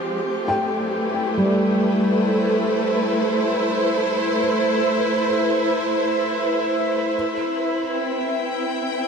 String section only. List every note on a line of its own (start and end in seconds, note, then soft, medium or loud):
0.00 0.26 F3 medium
0.00 0.26 G#3 medium
0.00 1.44 C4 medium
0.00 2.18 G4 medium
0.28 7.15 A3 medium
0.70 9.08 B4 medium
0.83 9.08 E4 medium
2.12 8.62 C5 medium
7.45 9.08 C4 medium
7.95 9.08 G5 medium